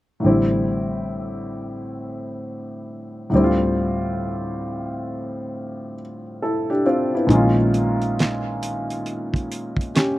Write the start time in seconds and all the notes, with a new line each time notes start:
0.20 A2 D3
0.24 A1 G3 C4 E4
3.30 D2 A2 D3
3.34 G3 C4
3.38 E4
3.44 F4
6.42 E4 A4
6.70 D4 G4
6.86 C4 F4
7.15 B3 E4
7.27 A#1 A#2 D#3 G#3, kick, closed hi-hat
7.33 C#4 F4
7.74 closed hi-hat
8.02 closed hi-hat
8.19 snare, clap, closed hi-hat
8.63 closed hi-hat
8.90 closed hi-hat
9.06 closed hi-hat
9.34 kick, closed hi-hat
9.52 closed hi-hat
9.77 kick
9.81 closed hi-hat
9.95 C#4 G4, snare, clap, closed hi-hat